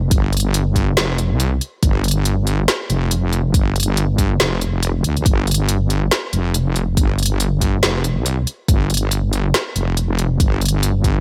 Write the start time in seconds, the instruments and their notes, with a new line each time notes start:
Already playing: wobble bass F1
0.11 wobble bass G1, kick, closed hi-hat
0.33 closed hi-hat
0.37 closed hi-hat
0.40 closed hi-hat
0.54 closed hi-hat
0.76 kick, closed hi-hat
0.97 wobble bass F1, snare, closed hi-hat
1.18 closed hi-hat
1.31 wobble bass C2
1.40 closed hi-hat
1.61 closed hi-hat
1.83 wobble bass G1, kick, closed hi-hat
2.04 closed hi-hat
2.08 closed hi-hat
2.11 closed hi-hat
2.25 closed hi-hat
2.47 closed hi-hat
2.68 snare, closed hi-hat
2.90 wobble bass F1, closed hi-hat
3.11 closed hi-hat
3.33 closed hi-hat
3.54 wobble bass G1, kick, closed hi-hat
3.76 closed hi-hat
3.80 closed hi-hat
3.83 closed hi-hat
3.97 closed hi-hat
4.18 kick, closed hi-hat
4.40 wobble bass F1, snare, closed hi-hat
4.61 closed hi-hat
4.83 closed hi-hat
5.04 wobble bass D2, closed hi-hat
5.17 closed hi-hat
5.26 wobble bass G1, kick, closed hi-hat
5.47 closed hi-hat
5.51 closed hi-hat
5.54 closed hi-hat
5.69 closed hi-hat
5.90 closed hi-hat
6.11 snare, closed hi-hat
6.33 wobble bass F1, closed hi-hat
6.54 closed hi-hat
6.76 closed hi-hat
6.97 wobble bass G1, kick, closed hi-hat
7.18 closed hi-hat
7.23 closed hi-hat
7.26 closed hi-hat
7.40 closed hi-hat
7.61 kick, closed hi-hat
7.83 wobble bass F1, snare, closed hi-hat
8.04 closed hi-hat
8.16 wobble bass C2
8.26 closed hi-hat
8.47 closed hi-hat
8.68 wobble bass G1, kick, closed hi-hat
8.90 closed hi-hat
8.94 closed hi-hat
8.97 closed hi-hat
9.11 closed hi-hat
9.33 closed hi-hat
9.54 snare, closed hi-hat
9.76 wobble bass F1, closed hi-hat
9.97 closed hi-hat
10.19 closed hi-hat
10.40 wobble bass G1, kick, closed hi-hat
10.61 closed hi-hat
10.65 closed hi-hat
10.68 closed hi-hat
10.83 closed hi-hat
11.04 kick, closed hi-hat